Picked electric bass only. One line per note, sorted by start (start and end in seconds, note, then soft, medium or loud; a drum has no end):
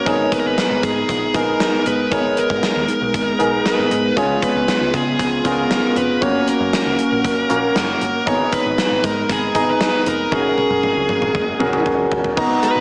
0.06 0.26 G#1 loud
0.45 0.54 G#1 medium
0.70 0.80 G#1 medium
0.83 1.03 G#2 medium
1.09 1.28 A#1 medium
1.34 1.54 A#1 medium
1.86 2.05 G1 medium
2.12 2.31 G#1 medium
2.50 2.60 G#2 medium
2.76 2.85 D#2 medium
3.01 3.11 B1 medium
3.14 3.33 G#1 medium
3.40 3.59 B1 medium
3.65 muted picked electric bass stroke soft
3.78 3.88 G#1 medium
3.91 4.10 G#2 medium
4.17 4.36 C#2 medium
4.55 4.65 C#2 medium
4.81 4.90 C#2 medium
4.94 5.21 C#3 medium
5.19 5.39 C#2 medium
5.45 5.64 C#2 medium
5.96 6.15 F1 medium
6.22 6.41 F#1 medium
6.60 6.70 F#2 medium
6.86 6.96 C#2 medium
7.12 7.21 A#1 medium
7.24 7.44 F#1 medium
7.50 7.69 A#1 medium
7.76 7.95 F#1 medium
8.01 8.20 G1 medium
8.27 8.46 G#1 loud
8.65 8.75 G#1 medium
8.91 9.01 G#1 medium
9.04 9.23 G#2 medium
9.30 9.49 G#1 medium
9.55 9.74 G#1 medium
10.06 10.26 F1 medium
10.32 10.51 F#1 loud
10.70 10.80 F#2 medium
10.96 11.06 C#2 medium
11.22 11.31 A#1 medium
11.35 11.54 F#1 medium
11.60 11.79 A#1 medium
11.86 12.05 F#1 medium
12.11 12.31 G1 medium
12.37 12.57 G#1 medium
12.75 12.80 G#1 medium